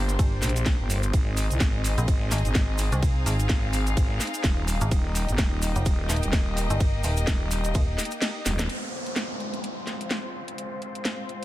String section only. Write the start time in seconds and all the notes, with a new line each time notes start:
Already playing: A#3 D4 G4 C5
1.13 C4 D#4 G#4 D#5
3.03 F5
4.91 A#3 G4 D#5
8.69 G#3 C4 F4 C5